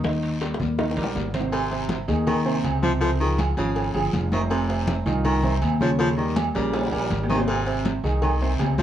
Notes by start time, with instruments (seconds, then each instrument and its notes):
Already playing: upright bass D#2
0.04 grand piano D#3 D#4 D#5, high bongo, high conga, high timbale, long guiro
0.23 high timbale
0.41 grand piano G3 G4 A#4, high bongo, high timbale, short guiro
0.54 high bongo
0.59 upright bass D#2, low conga, short guiro
0.78 grand piano D#3 D#4 D#5, high bongo, low conga, high timbale, long guiro
0.91 low bongo
0.97 upright bass A#1, grand piano G3 G4 A#4, low conga, high timbale
1.04 low bongo
1.15 upright bass G#1, low bongo, low conga, low timbale, short guiro
1.34 grand piano C3 C4 C5, low conga, high timbale, short guiro
1.41 low bongo
1.52 baritone saxophone C3, cowbell, high conga, low agogo, long guiro
1.71 grand piano C3 C4 C5, cowbell, high conga, low agogo
1.89 cowbell, high conga, short guiro
2.08 upright bass D#2, grand piano D#3 D#4 G#4, high conga, low agogo, short guiro
2.27 baritone saxophone D#3, cowbell, high conga, low conga, low agogo, long guiro
2.46 grand piano C3 C4 C5, high conga, low agogo
2.64 upright bass C#2, cowbell, high conga, low agogo, short guiro
2.83 grand piano C3 C4 C5, baritone saxophone F3, high conga, short guiro
3.01 grand piano C3 C4 C5, baritone saxophone F3, cowbell, low agogo, long guiro
3.20 baritone saxophone D#3, grand piano F3 F4 G#4, high conga, low agogo
3.39 cowbell, high conga, low agogo, short guiro
3.57 upright bass G#1, baritone saxophone C#3, grand piano F3 F4 G#4, cowbell, high conga, short guiro
3.76 cowbell, high conga, low agogo, long guiro
3.94 upright bass G1, grand piano F3 F4 G#4, high conga, low agogo
4.13 upright bass F1, cowbell, high conga, short guiro
4.32 grand piano C3 C4 C5, baritone saxophone D#3, high conga, low agogo, short guiro
4.50 baritone saxophone C3, cowbell, high conga, low agogo, long guiro
4.69 grand piano C3 C4 C5, cowbell, high conga, low agogo
4.88 cowbell, high conga, short guiro
5.06 upright bass C2, grand piano D#3 D#4 F4, high conga, low agogo, short guiro
5.24 baritone saxophone D#3, cowbell, high conga, low conga, low agogo, long guiro
5.43 grand piano C3 C4 C5, high conga, low conga, low agogo
5.61 upright bass D#2, cowbell, high conga, low agogo, short guiro
5.81 grand piano C#3 C#4 C#5, baritone saxophone F3, high conga, short guiro
5.99 grand piano C#3 C#4 C#5, baritone saxophone F3, cowbell, high conga, low agogo, long guiro
6.18 baritone saxophone D#3, grand piano G3 G4 A#4, high conga, low agogo
6.36 cowbell, high conga, low agogo, short guiro
6.55 upright bass A#1, baritone saxophone C#3, grand piano G3 G4 A#4, cowbell, high conga, short guiro
6.73 cowbell, high conga, high timbale, low agogo, long guiro
6.86 high timbale
6.92 upright bass A#1, grand piano G3 G4 A#4, high conga, low agogo
6.99 high timbale
7.10 upright bass G#1, cowbell, high conga, short guiro
7.24 low timbale
7.30 grand piano C3 C4 C5, baritone saxophone D#3, high conga, low agogo, short guiro
7.36 low timbale
7.48 baritone saxophone C3, cowbell, high conga, low agogo, long guiro
7.67 grand piano C3 C4 C5, cowbell, high conga, low agogo
7.85 cowbell, high conga, short guiro
8.04 upright bass C2, grand piano D#3 D#4 G#4, high conga, low agogo, short guiro
8.22 baritone saxophone D#3, cowbell, high conga, low conga, low agogo, long guiro
8.41 grand piano C3 C4 C5, high conga, low agogo
8.59 upright bass C#2, cowbell, high conga, low timbale, low agogo, short guiro
8.78 grand piano C3 C4, baritone saxophone F3, high conga, short guiro